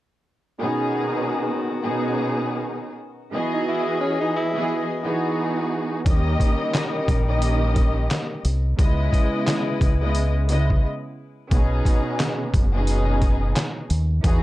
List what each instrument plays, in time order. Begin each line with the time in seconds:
0.59 string section B2 B3 C#4 D#4 G#4, saxophone section D#3 B3 F#4
1.82 string section B2 B3 C#4 D#4 G#4
3.32 string section E3 B3 F#4 G#4 D#5, saxophone section E3 G#4 D#5
3.53 tenor saxophone D#4
3.68 tenor saxophone E4
4.00 tenor saxophone C#4
4.20 tenor saxophone D#4
4.36 tenor saxophone E4
4.54 string section E3 B3 F#4 G#4 D#5
5.03 string section E3 B3 D#4 F#4 G#4
6.05 fingered electric bass D#2, string section D#3 A#3 C#4 G4 D#5, saxophone section G3 D#4 A#4, kick, closed hi-hat
6.40 kick, closed hi-hat
6.74 snare, clap, closed hi-hat
7.08 fingered electric bass A#1, kick, closed hi-hat
7.27 string section D#3 A#3 C#4 G4 D#5
7.42 closed hi-hat
7.76 kick, closed hi-hat
8.11 snare, clap, closed hi-hat
8.45 fingered electric bass C2, closed hi-hat
8.78 fingered electric bass C#2, string section C#3 G#3 B3 E4 D#5, saxophone section G#3 E4 B4, kick, closed hi-hat
9.13 kick, closed hi-hat
9.47 snare, clap, closed hi-hat
9.81 fingered electric bass C#2, kick, closed hi-hat
10.01 string section C#3 G#3 B3 E4 D#5
10.15 closed hi-hat
10.48 string section C#3 G#3 B3 E4 D#5, closed hi-hat
10.70 kick
11.51 fingered electric bass B1, string section B2 B3 C#4 D#4 G#4, kick, closed hi-hat
11.85 kick, closed hi-hat
12.20 snare, clap, closed hi-hat
12.54 fingered electric bass F#1, kick, closed hi-hat
12.73 string section B2 B3 C#4 D#4 G#4
12.87 closed hi-hat
13.22 kick, closed hi-hat
13.56 snare, clap, closed hi-hat
13.90 fingered electric bass D#2, closed hi-hat
14.23 fingered electric bass E2, string section E3 B3 D#4 F#4 G#4, kick, closed hi-hat